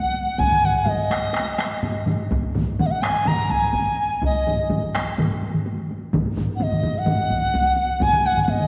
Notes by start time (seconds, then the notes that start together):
Already playing: F#5
0.03 taiko high
0.14 taiko high
0.27 taiko high
0.38 G#5, taiko, taiko low-mid, taiko mid, taiko high
0.50 taiko low-mid, taiko mid, taiko high
0.64 F#5, taiko low-mid, taiko mid
0.75 taiko low-mid, taiko mid, taiko high
0.86 D#5, taiko low-mid, taiko mid, taiko high
0.98 taiko high
1.10 taiko rim, taiko high
1.22 taiko high
1.33 taiko rim, taiko high
1.36 taiko rim
1.47 taiko high
1.59 taiko rim, taiko high
1.71 taiko high
1.83 taiko low-mid, taiko mid, taiko high
1.96 taiko high
2.07 taiko low-mid, taiko mid, taiko high
2.20 taiko high
2.31 taiko, taiko high
2.44 taiko high
2.55 taiko low-mid, taiko mid, taiko high
2.68 taiko high
2.79 F#5, taiko low-mid, taiko mid, taiko high
2.86 D#5
2.91 F#5, taiko high
3.02 G#5, taiko rim, taiko high
3.05 taiko rim
3.15 taiko high
3.26 A#5, taiko low-mid, taiko mid, taiko high
3.38 taiko high
3.49 G#5, taiko, taiko high
3.61 taiko low-mid, taiko mid, taiko high
3.73 taiko, taiko high
3.86 taiko high
4.10 taiko high
4.22 D#5, taiko, taiko high
4.34 taiko high
4.47 taiko low-mid, taiko mid, taiko high
4.58 taiko high
4.70 taiko low-mid, taiko mid, taiko high
4.82 taiko high
4.94 taiko rim, taiko high
5.07 taiko high
5.18 taiko low-mid, taiko mid, taiko high
5.31 taiko high
5.42 taiko high
5.54 taiko low-mid, taiko mid, taiko high
5.66 taiko high
5.79 taiko high
5.91 taiko high
6.02 taiko high
6.13 taiko, taiko low-mid, taiko mid, taiko high
6.26 taiko high
6.37 taiko low-mid, taiko mid, taiko high
6.50 taiko high
6.56 F#5
6.61 D#5, taiko low-mid, taiko mid, taiko high
6.71 taiko low-mid, taiko mid, taiko high
6.83 taiko low-mid, taiko mid, taiko high
6.95 F#5, taiko high
7.06 taiko low-mid, taiko mid, taiko high
7.19 taiko high
7.30 taiko, taiko high
7.42 taiko high
7.54 taiko, taiko high
7.66 taiko high
7.77 taiko high
7.88 taiko high
8.00 G#5, taiko, taiko low-mid, taiko mid, taiko high
8.12 taiko low-mid, taiko mid, taiko high
8.26 F#5, taiko high
8.37 taiko low-mid, taiko mid, taiko high
8.43 F#5
8.48 D#5, taiko low-mid, taiko mid, taiko high
8.60 taiko low-mid, taiko mid, taiko high